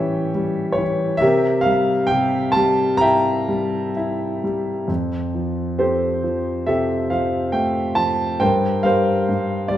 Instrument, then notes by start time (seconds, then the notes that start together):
grand piano
Already playing: A2 E3 G3 C#4 G4 C#5 E5 G5
0.35 G3
0.72 C#5
0.78 E3
1.17 C3 E5
1.21 G4 A#4
1.61 F5
1.66 G3
2.07 G5
2.11 C3
2.52 A5
2.56 G3
2.97 E5 G5 A#5
3.02 E4
3.48 G3
3.97 E4
4.44 G3
4.88 F2
5.35 F3
5.78 C4 G4 A4 C5
6.23 F3
6.66 C3 G4 A4 E5
7.10 F3 F5
7.52 A3 G5
7.95 F3 A5
8.40 G2 A#4 C5 G5
8.83 G3 A#4 C5 F5
9.29 G2
9.68 G3 D5